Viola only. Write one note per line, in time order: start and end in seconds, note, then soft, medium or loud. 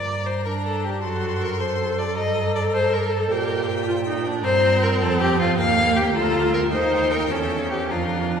0.45 0.99 D4 medium
1.03 1.59 F#4 medium
1.60 3.32 A4 medium
3.31 3.87 G4 medium
3.88 3.95 F4 medium
4.07 4.27 D#4 medium
4.26 4.46 D4 medium
4.44 5.60 C4 medium
5.59 6.14 A#3 medium
6.15 6.71 F4 medium
6.72 7.32 D#4 medium
7.30 7.93 C#4 medium
7.91 8.40 D4 medium